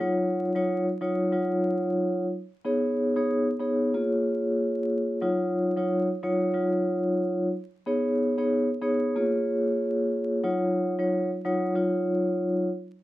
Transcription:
X:1
M:4/4
L:1/16
Q:"Swing 16ths" 1/4=92
K:Ebm
V:1 name="Vibraphone"
[G,EFd]3 [G,EFd]2 z [G,EFd]2 [G,EFd]6 z2 | [=B,^D^G^c]3 [B,DGc]2 z [B,DGc]2 [_B,FA_d]6- [B,FAd] z | [G,EFd]3 [G,EFd]2 z [G,EFd]2 [G,EFd]6 z2 | [=B,^D^G^c]3 [B,DGc]2 z [B,DGc]2 [_B,FA_d]6- [B,FAd] z |
[G,EFd]3 [G,EFd]2 z [G,EFd]2 [G,EFd]6 z2 |]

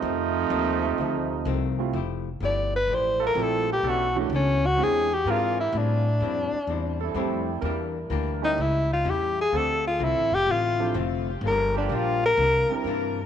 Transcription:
X:1
M:4/4
L:1/8
Q:"Swing" 1/4=126
K:Fmix
V:1 name="Alto saxophone"
z8 | [K:F] z2 d =B c _B A G | ^F A, ^C F ^G =G =F E | D6 z2 |
z3 _E =E F G _A | A F E G F2 z2 | B D F B3 z2 |]
V:2 name="Trombone section"
z8 | [K:F] z4 z [G,EFA]3 | [E,^CDA] z4 z [E,^B,D_B]2 | z4 z [G,CEA]3 |
[G,DEB]4 z4 | [F,CDA] z6 z | z [F,B,DG]3 z4 |]
V:3 name="Grand piano"
z6 z [G,A,C=EF] | [K:F] z6 [F,A,CEG] z | z [E,A,^CD^F] z2 [E,^G,^B,D=G] z3 | z6 [G,A,CEG]2 |
z3 [G,A,_DEG] z4 | z4 z [F,CDEA] z2 | z4 z [G,CDEB] z2 |]
V:4 name="Hollow-body jazz guitar"
[F,,E,A,C] z [F,,E,A,C] z [F,,E,A,C] z [F,,E,A,C] z | [K:F] [F,A,EG] z [F,A,EG] z [F,A,EG] z [F,A,EG] z | [=B,,E,A,D] z [B,,E,A,D] z [E,^B,D^G] z [E,B,DG] z | [A,,G,CE] z [A,,G,CE] z [A,,G,CE] z [A,,G,CE] z |
[E,B,DG] z [E,B,DG] z [A,,G,^CE] z [A,,G,CE] z | [D,A,CF] z [D,A,CF] z [D,A,CF] z [D,A,CF] z | [G,,F,B,D] z [G,,F,B,D] z [C,E,B,D] z [C,E,B,D] z |]
V:5 name="Trombone section" clef=bass
[C,F,A,^D]6- [C,F,A,D] z | [K:F] z8 | z8 | z8 |
z8 | z8 | z8 |]
V:6 name="Upright bass" clef=bass
F,,2 E,,2 D,,2 C,,2 | [K:F] F,,,2 G,,,2 A,,,2 B,,,2 | =B,,,2 ^C,,2 z2 ^G,,2 | A,,2 F,, z E,,2 F,,2 |
E,,2 D,,2 ^C,,2 E,,2 | D,,2 (3C,, A,,, F,,, A,,,2 F,,,2 | G,,,2 B,,,2 C,, z G,,2 |]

